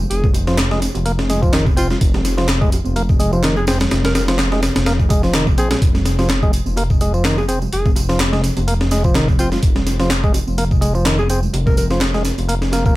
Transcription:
0.00 low conga
0.10 F1 G#4, closed hi-hat, tambourine
0.23 kick, tambourine, high conga, low conga
0.34 closed hi-hat, tambourine, high bongo
0.47 F3, snare, tambourine
0.58 snare, clap, closed hi-hat, tambourine, high bongo, high conga
0.71 G#3, snare, tambourine
0.82 snare, closed hi-hat, tambourine
0.94 F1, closed hi-hat, tambourine, high bongo, high conga
1.06 A#3, closed hi-hat, tambourine
1.18 snare, tambourine, high bongo
1.29 G#3, snare, closed hi-hat, tambourine, high conga
1.42 F3, kick, tambourine
1.53 D#3, snare, clap, closed hi-hat, tambourine, high bongo
1.67 kick, tambourine, high conga
1.77 C4 F4, closed hi-hat, tambourine, high bongo
1.90 F4, snare, tambourine, low conga
2.01 F1, kick, closed hi-hat, tambourine
2.14 snare, tambourine, high bongo, high conga, low conga
2.25 snare, closed hi-hat, tambourine
2.37 F3, snare, tambourine, high bongo
2.49 snare, clap, closed hi-hat, tambourine, high conga
2.61 G#3, kick, tambourine
2.72 closed hi-hat, tambourine, high bongo
2.85 F1, tambourine, high conga
2.96 A#3, closed hi-hat, tambourine, high bongo
3.09 kick, tambourine
3.19 G#3, closed hi-hat, tambourine, high conga
3.33 F3, tambourine, high bongo
3.43 D#3, snare, clap, closed hi-hat, tambourine
3.56 G#4, tambourine, high bongo, high conga
3.67 C4 G#4, snare, closed hi-hat, tambourine
3.80 snare, closed hi-hat, tambourine, low conga
3.91 F1, snare, closed hi-hat, tambourine, high bongo
4.04 A#4, snare, closed hi-hat, tambourine, high conga, low conga
4.14 A#4, snare, closed hi-hat, tambourine, high bongo
4.28 F3, snare, closed hi-hat, tambourine
4.38 snare, clap, closed hi-hat, tambourine, high conga
4.52 G#3, snare, tambourine, high bongo
4.62 snare, closed hi-hat, tambourine
4.75 F1, snare, closed hi-hat, tambourine, high bongo, high conga
4.86 A#3, snare, closed hi-hat, tambourine
4.99 kick, tambourine
5.09 G#3, kick, closed hi-hat, tambourine, high bongo, high conga
5.23 F3, snare, tambourine
5.34 D#3, snare, clap, closed hi-hat, tambourine, high bongo
5.47 kick, tambourine, high conga
5.58 A#1 C4 G#4, closed hi-hat, tambourine
5.71 G#4, snare, closed hi-hat, tambourine, high bongo, low conga
5.82 F1, kick, closed hi-hat, tambourine, high bongo
5.94 snare, tambourine, high conga, low conga
6.05 snare, closed hi-hat, tambourine
6.19 F3, snare, tambourine, high bongo
6.29 snare, clap, closed hi-hat, tambourine, high conga
6.43 G#3, kick, tambourine, high bongo
6.53 closed hi-hat, tambourine
6.66 F1, tambourine, high conga
6.76 A#3, closed hi-hat, tambourine, high bongo
6.90 kick, tambourine
7.01 G#3, closed hi-hat, tambourine, high bongo, high conga
7.14 F3, tambourine
7.25 D#3, snare, clap, closed hi-hat, tambourine
7.37 G#4, tambourine, high bongo, high conga
7.48 C4 G#4, closed hi-hat, tambourine
7.62 tambourine, high bongo, low conga
7.73 F1 G#4, closed hi-hat, tambourine
7.85 kick, tambourine, high conga, low conga
7.96 closed hi-hat, tambourine, high bongo
8.09 F3, snare, tambourine
8.20 snare, clap, closed hi-hat, tambourine, high bongo, high conga
8.33 G#3, snare, tambourine
8.44 snare, closed hi-hat, tambourine
8.57 F1, closed hi-hat, tambourine, high bongo, high conga
8.68 A#3, closed hi-hat, tambourine
8.81 snare, tambourine, high bongo
8.91 G#3, snare, closed hi-hat, tambourine, high conga
9.04 F3, kick, tambourine
9.15 D#3, snare, clap, closed hi-hat, tambourine, high bongo
9.28 kick, tambourine, high conga
9.39 C4 F4, closed hi-hat, tambourine, high bongo
9.52 F4, snare, tambourine, low conga
9.63 F1, kick, closed hi-hat, tambourine
9.75 snare, tambourine, high bongo, high conga, low conga
9.87 snare, closed hi-hat, tambourine
10.00 F3, snare, tambourine, high bongo
10.10 snare, clap, closed hi-hat, tambourine, high conga
10.24 G#3, kick, tambourine
10.34 closed hi-hat, tambourine, high bongo
10.47 F1, tambourine, high conga
10.57 A#3, closed hi-hat, tambourine, high bongo
10.71 kick, tambourine
10.81 G#3, closed hi-hat, tambourine, high conga
10.94 F3, tambourine, high bongo
11.06 D#3, snare, clap, closed hi-hat, tambourine
11.18 G#4, tambourine, high bongo, high conga
11.29 C4 G#4, closed hi-hat, tambourine
11.42 tambourine, low conga
11.53 F1, closed hi-hat, tambourine, high bongo
11.66 A#4, kick, tambourine, high conga, low conga
11.77 A#4, closed hi-hat, tambourine, high bongo
11.90 F3, snare, tambourine
12.01 snare, clap, closed hi-hat, tambourine, high conga
12.14 G#3, snare, tambourine, high bongo
12.25 snare, closed hi-hat, tambourine
12.38 F1, closed hi-hat, tambourine, high bongo, high conga
12.49 A#3, closed hi-hat, tambourine
12.62 snare, tambourine
12.72 A#3, snare, closed hi-hat, tambourine, high bongo, high conga
12.86 A#3, kick, tambourine

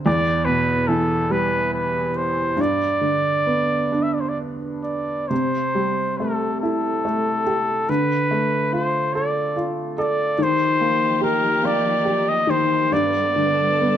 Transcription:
0.06 E2 D5
0.45 B2 B4
0.88 E3 A4
1.30 G3 B4
1.74 B4
2.17 C5
2.57 G2
2.61 D5
3.01 D3
3.46 B3
3.92 D4
4.03 E5
4.14 D5
4.20 C5
4.29 D5
4.84 D5
5.28 C3 C5
5.75 G3
6.18 A3 A4
6.61 E4 A4
7.05 A3
7.47 G4
7.89 D3 B4
8.31 A3
8.73 F4 C5
9.14 A4 D5
9.56 F4
9.98 A4 D5
10.38 D#3 F3 D#4 G4
10.43 C5
10.81 A#3
11.21 G4 A#4
11.63 A#3 D5
12.05 G4
12.28 D#5
12.47 D#3 C5
12.91 G2 G3 B3 A4 D5
13.36 D3
13.81 B3

